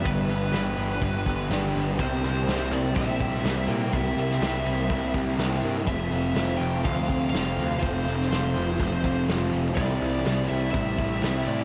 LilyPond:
<<
  \new Staff \with { instrumentName = "Lead electric guitar" } { \time 4/4 \key c \major \tempo 4 = 123 b'4 b'2 r4 | c''4. d''8 e''4. g''8 | e''8 e''2 r4. | e''4. g''8 f''4 f''4 |
c''4 c''2 r4 | d''4. e''8 e''4. d''8 | }
  \new Staff \with { instrumentName = "Overdriven electric guitar" } { \time 4/4 \key c \major <g, d g b d' g'>4 <g b d' g'>4 <g, d g b d' g'>8 <g b d' g'>8 <g b d' g'>4 | <c g bes e' g'>4 <g bes e' g'>4 <c g bes e' g'>8 <bes e' g'>8 <g bes e' g'>4 | <c g bes e' g'>4 <g bes e' g'>4 <c g bes e' g'>8 <bes e' g'>8 <g bes e' g'>4 | <f, c f a c' f'>4 <f a c' f'>4 <f, c f a c' f'>8 <f a c' f'>8 <f a c' f'>4 |
<f, c f a c' f'>4 <f a c' f'>4 <f, c f a c' f'>8 <f a c' f'>8 <f a c' f'>4 | <c e g c' e'>4 <e g c' e'>4 <c e g c' e'>8 <g c' e'>8 <e g c' e'>4 | }
  \new Staff \with { instrumentName = "Twelve-string acoustic guitar" } { \time 4/4 \key c \major <e b d'>8 b8 e8 b8 e8 e8 d'8 b8 | g8 bes8 g8 bes8 g8 g8 e'8 bes8 | g8 bes8 g8 bes8 g8 g8 e'8 bes8 | f8 c'8 f4 f8 c'8 a'4 |
f8 c'8 f4 f8 c'8 a'8 e'8 | g4 g8 e'8 g4 g'8 e'8 | }
  \new Staff \with { instrumentName = "Distorted electric guitar" } { \clef bass \time 4/4 \key c \major <g, d g>4 <g, d g>4 <g, d g>8 <d g>8 <g, d g>4 | <c g c'>4 <c g c'>4 <c g c'>8 <g c'>8 <c g c'>4 | <c g c'>4 <c g c'>4 <c g c'>8 <g c'>8 <c g c'>4 | <f, c f>4 <f, c f>4 <f, c f>8 <c f>8 <f, c f>4 |
<f, c f>4 <f, c f>4 <f, c f>8 <c f>8 <f, c f>4 | <c g c'>4 <c g c'>4 <c g c'>8 <g c'>8 <c g c'>4 | }
  \new Staff \with { instrumentName = "Picked electric bass" } { \clef bass \time 4/4 \key c \major g,,8 g,,8 g,,8 g,,8 g,,8 g,,8 g,,8 g,,8 | c,8 c,8 c,8 c,8 bes,,4 c,8 bes,8 | c,8 c,8 c,8 c,8 c,8 c,8 c,8 g,8 | f,,8 f,,8 f,,8 f,,8 d,4 f,,8 d,8 |
f,,8 f,,8 f,,8 f,,8 f,,8 f,,8 f,,8 f,,8 | c,8 c,8 c,8 c,8 a,,4 c,8 a,8 | }
  \new DrumStaff \with { instrumentName = "Drums" } \drummode { \time 4/4 <hh bd>8 hh8 <hh sn>8 hh8 <hh bd>8 <hh bd>8 <hh sn>8 hh8 | <hh bd>8 hh8 <hh sn>8 hh8 <hh bd>8 <hh bd>16 sn16 <hh sn>8 hh8 | <hh bd>8 hh16 sn16 <hh sn>8 hh8 <hh bd>8 <hh bd>8 <hh sn>8 hh8 | <hh bd>8 hh8 <hh sn>8 hh8 <hh bd>8 <hh bd>8 <hh sn>8 hh8 |
<hh bd>8 hh16 sn16 <hh sn>8 hh8 <hh bd>8 <hh bd>8 <hh sn>8 hh8 | <hh bd>8 hh8 <hh sn>8 hh8 <hh bd>8 <hh bd>8 <hh sn>8 hh8 | }
>>